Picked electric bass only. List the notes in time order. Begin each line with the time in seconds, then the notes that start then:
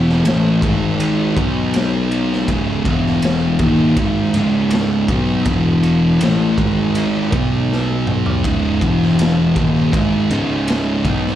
Already playing: E1
0.25 A1
0.62 G#1
1.37 B1
2.48 C#1
2.85 E1
3.60 D#1
3.96 G#1
4.34 C#1
5.08 B1
5.46 E1
6.21 A1
6.58 G#1
7.32 B1
8.44 C#1
8.81 E1
9.56 D#1
9.93 G#1
10.31 C#1
11.05 B1